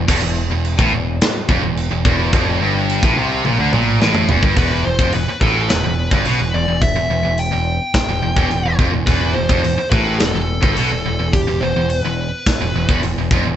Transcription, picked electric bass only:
0.08 0.21 E1 loud
0.23 0.49 E1 medium
0.50 0.76 E1 medium
0.78 0.91 A1 loud
0.93 1.19 E1 medium
1.49 1.62 F1 medium
1.63 1.89 E1 medium
1.91 2.04 E1 medium
2.05 2.31 E1 loud
2.33 2.59 F1 loud
2.61 3.00 G1 medium
3.03 3.16 A1 medium
3.16 3.43 C2 medium
3.45 3.58 A#1 medium
3.59 3.72 D2 medium
3.73 3.99 A#1 medium
4.01 4.27 A1 loud
4.30 4.42 E1 medium
4.43 4.56 G1 medium
4.57 4.83 E1 medium
4.85 4.98 E1 medium
4.99 5.12 F1 medium
5.15 5.27 E1 medium
5.28 muted picked electric bass stroke soft
5.41 5.68 A1 medium
5.71 5.84 E1 medium
5.85 6.10 E1 medium
6.11 6.25 G1 loud
6.26 6.39 B1 medium
6.40 6.53 E1 medium
6.54 6.67 E1 medium
6.68 6.95 E1 medium
6.96 7.09 E1 medium
7.11 7.24 E1 medium
7.25 7.51 E1 medium
7.53 7.79 E1 medium
8.09 8.22 E1 medium
8.22 8.36 E1 medium
8.37 8.50 E1 medium
8.51 8.64 E1 medium
8.66 8.78 E1 medium
8.79 8.92 F1 loud
8.94 9.06 E1 medium
9.07 9.34 E1 loud
9.36 9.49 E1 medium
9.49 9.63 F1 loud
9.64 9.77 E1 medium
9.78 muted picked electric bass stroke soft
9.91 10.18 A1 medium
10.20 10.33 E1 medium
10.34 10.61 E1 medium
10.63 10.76 G1 loud
10.77 10.90 B1 loud
10.91 11.04 E1 medium
11.06 11.19 E1 medium
11.19 11.46 E1 medium
11.47 11.60 E1 medium
11.61 11.74 E1 medium
11.75 12.01 E1 medium
12.03 12.30 E1 medium
12.60 12.73 E1 medium
12.74 12.87 E1 medium
12.88 13.02 E1 loud
13.03 13.16 E1 medium
13.17 13.30 E1 medium
13.31 13.44 F1 medium
13.45 13.56 E1 medium

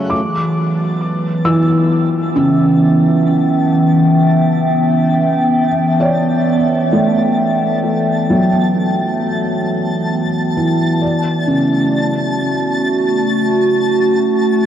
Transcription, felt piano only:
0.00 1.58 F#3 medium
0.10 1.65 D6 medium
1.45 2.32 E3 medium
1.45 5.66 E6 medium
2.36 6.57 C#3 medium
6.00 6.87 C#5 medium
6.00 10.21 D5 medium
6.93 8.47 A3 medium
8.30 12.49 F#3 medium
10.57 11.43 E3 medium
11.02 14.66 D5 soft
11.47 14.66 C#3 medium

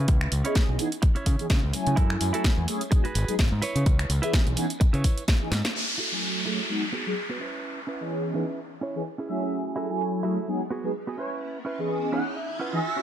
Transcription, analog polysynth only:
0.45 0.77 E3 medium
0.45 0.77 B3 medium
0.45 0.77 C#4 medium
0.45 0.77 G#4 medium
0.45 0.77 D#5 medium
0.79 0.87 E3 loud
0.79 0.87 B3 medium
0.79 0.88 C#4 medium
0.79 0.88 D#4 loud
0.79 0.88 G#4 loud
1.39 1.46 E3 medium
1.39 1.46 B3 medium
1.39 1.46 C#4 medium
1.39 1.46 D#4 medium
1.39 1.46 G#4 loud
1.73 2.31 F#3 medium
1.73 2.31 A3 medium
1.73 2.31 C#4 medium
1.73 2.31 E4 medium
1.73 2.31 G#5 medium
2.34 2.66 F#3 medium
2.34 2.66 A3 medium
2.34 2.66 C#4 medium
2.34 2.66 E4 medium
2.34 2.66 G#5 medium
2.68 2.81 F#3 medium
2.68 2.81 A3 medium
2.68 2.82 C#4 medium
2.68 2.82 E4 medium
2.68 2.82 G#4 medium
2.92 3.05 F#3 medium
2.92 3.05 G#3 medium
2.92 3.05 B3 medium
2.92 3.05 D#4 medium
2.92 3.05 G#4 loud
3.28 3.35 F#3 medium
3.28 3.35 G#3 medium
3.28 3.35 B3 medium
3.28 3.35 D#4 medium
3.28 3.35 G#4 loud
4.23 4.55 E3 medium
4.23 4.55 B3 medium
4.23 4.55 C#4 medium
4.23 4.55 G#4 medium
4.57 4.65 E3 loud
4.57 4.65 B3 loud
4.57 4.65 C#4 medium
4.57 4.66 D#4 loud
4.57 4.66 G#4 loud
5.41 5.48 E3 loud
5.41 5.48 B3 medium
5.41 5.48 C#4 medium
5.41 5.48 D#4 medium
5.41 5.48 G#4 loud
6.12 6.44 F#3 medium
6.12 6.44 A3 medium
6.12 6.44 C#4 medium
6.12 6.44 E4 medium
6.12 6.44 G#5 medium
6.46 6.59 F#3 medium
6.46 6.59 A3 medium
6.46 6.59 C#4 medium
6.46 6.60 E4 medium
6.46 6.60 G#4 medium
6.69 6.83 F#3 medium
6.69 6.83 G#3 medium
6.69 6.83 B3 medium
6.69 6.83 D#4 medium
6.69 6.83 G#4 medium
7.06 7.13 F#3 medium
7.06 7.13 G#3 medium
7.06 7.13 B3 medium
7.06 7.13 D#4 medium
7.06 7.13 G#4 loud
8.01 8.32 E3 medium
8.01 8.33 B3 medium
8.01 8.33 C#4 medium
8.01 8.33 G#4 medium
8.01 8.33 D#5 medium
8.35 8.43 E3 loud
8.35 8.43 B3 medium
8.35 8.43 C#4 medium
8.35 8.44 D#4 medium
8.35 8.44 G#4 loud
8.95 9.02 E3 medium
8.95 9.02 B3 medium
8.95 9.02 C#4 medium
8.95 9.02 D#4 medium
8.95 9.02 G#4 loud
9.29 9.87 F#3 medium
9.29 9.87 A3 medium
9.29 9.87 C#4 medium
9.29 9.87 E4 medium
9.29 9.87 G#4 medium
9.89 10.21 F#3 medium
9.89 10.22 A3 medium
9.89 10.22 C#4 medium
9.89 10.22 E4 medium
9.89 10.22 G#5 medium
10.24 10.37 F#3 medium
10.24 10.37 A3 medium
10.24 10.37 C#4 medium
10.24 10.38 E4 medium
10.24 10.38 G#4 medium
10.47 10.61 F#3 medium
10.47 10.61 G#3 medium
10.47 10.61 B3 medium
10.47 10.61 D#4 medium
10.47 10.61 G#4 medium
10.84 10.91 F#3 medium
10.84 10.91 G#3 medium
10.84 10.91 B3 medium
10.84 10.91 D#4 medium
10.84 10.91 G#4 loud
11.78 12.10 E3 medium
11.78 12.10 B3 medium
11.78 12.11 C#4 medium
11.78 12.11 G#4 medium
11.78 12.11 D#5 medium
12.12 12.21 E3 loud
12.12 12.21 B3 medium
12.12 12.21 C#4 medium
12.12 12.21 D#4 medium
12.12 12.21 G#4 loud
12.73 12.80 E3 medium
12.73 12.80 B3 medium
12.73 12.80 C#4 medium
12.73 12.80 D#4 medium
12.73 12.80 G#4 loud

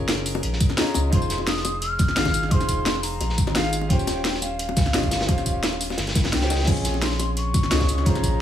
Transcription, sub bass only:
0.00 0.42 F#1 loud
0.43 0.59 A#1 medium
0.95 1.11 C#2 loud
1.13 1.98 F1 loud
1.99 2.15 D#1 loud
2.17 2.50 G#1 loud
2.51 3.19 F1 loud
3.21 3.40 A#1 loud
3.38 3.89 G#1 loud
3.90 4.75 D#1 loud
4.77 4.92 C#2 loud
4.94 5.27 G1 loud
5.29 5.97 D#1 loud
5.98 6.14 G1 medium
6.15 6.34 G1 loud
6.33 6.66 C#2 loud
6.67 7.53 A#1 loud
7.54 7.70 G#1 loud
7.72 8.05 C#2 loud
8.06 8.41 A#1 loud

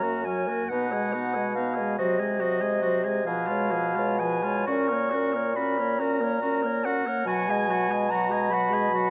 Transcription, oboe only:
0.03 0.25 F#4 medium
0.27 0.50 C#4 medium
0.49 0.70 F#4 medium
0.71 0.94 D#4 medium
0.92 1.15 G#4 medium
1.13 1.36 D#4 medium
1.34 1.54 G#4 medium
1.55 1.76 D#4 medium
1.75 1.97 G#4 medium
1.98 2.21 F#4 medium
2.20 2.42 G#4 medium
2.40 2.63 F#4 medium
2.61 2.82 G#4 medium
2.82 3.06 F#4 medium
3.04 3.25 G#4 medium
3.26 3.48 G#4 medium
3.47 3.73 F4 medium
3.71 3.97 G#4 medium
3.96 4.18 F4 medium
4.19 4.45 G#4 medium
4.43 4.66 F4 medium
4.66 4.90 F#4 medium
4.88 5.12 A#4 medium
5.10 5.34 F#4 medium
5.33 5.54 A#4 medium
5.55 5.79 F#4 medium
5.78 6.01 A#4 medium
5.99 6.22 F#4 medium
6.21 6.41 A#4 medium
6.42 6.64 F#4 medium
6.63 6.86 A#4 medium
6.85 7.08 F#4 medium
7.06 7.26 A#4 medium
7.28 7.52 F#4 medium
7.50 7.72 G#4 medium
7.70 7.93 F#4 medium
7.91 8.10 G#4 medium
8.10 8.33 F#4 medium
8.32 8.55 G#4 medium
8.53 8.75 F#4 medium
8.74 8.93 G#4 medium
8.94 9.10 F#4 medium

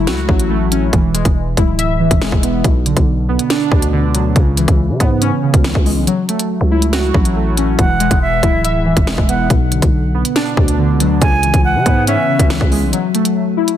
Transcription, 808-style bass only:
0.07 0.28 C#2 loud
0.29 0.90 A1 loud
0.93 1.24 E1 loud
1.25 1.56 E1 loud
1.57 2.09 D1 loud
2.11 2.31 E1 loud
2.32 2.63 E1 loud
2.64 2.95 B1 loud
2.97 3.38 B1 loud
3.72 4.05 D2 loud
4.04 4.21 C#2 loud
4.20 4.35 D2 loud
4.36 4.67 C#2 loud
4.68 4.91 C#2 loud
4.89 5.00 C#3 medium
5.00 5.31 G#2 loud
5.54 5.74 C#2 loud
5.75 5.98 C#2 loud
5.97 6.07 B1 loud
6.61 7.12 C#2 loud
7.14 7.76 A1 loud
7.79 8.10 E1 loud
8.11 8.42 E1 loud
8.43 8.94 D1 loud
8.97 9.17 E1 loud
9.18 9.49 E1 loud
9.50 9.81 B1 loud
9.82 10.23 B1 loud
10.57 10.91 D2 loud
10.89 11.07 C#2 medium
11.05 11.21 D2 loud
11.22 11.52 C#2 loud
11.54 11.77 C#2 loud
11.75 11.85 C#3 loud
11.86 12.17 G#2 loud
12.39 12.60 C#2 loud
12.61 12.84 C#2 loud
12.82 12.92 B1 loud

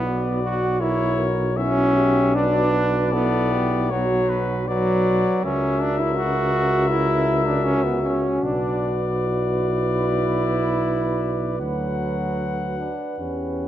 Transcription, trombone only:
0.00 0.42 B3 loud
0.43 0.82 F#4 loud
0.81 1.31 E4 loud
1.58 2.36 C#4 loud
2.35 3.14 D4 loud
3.13 3.92 B3 loud
3.90 4.68 F#3 loud
4.68 5.46 F#3 loud
5.44 5.83 C#4 loud
5.82 6.02 D4 loud
6.00 6.18 E4 loud
6.17 6.92 F#4 loud
6.90 7.48 E4 loud
7.46 7.66 D4 medium
7.64 7.86 C#4 loud
7.84 8.02 B3 medium
8.03 8.45 C#4 loud
8.44 8.96 D4 loud
9.24 11.57 E4 loud
11.59 12.76 F#3 medium
12.78 13.20 D4 medium
13.19 13.68 C#4 medium

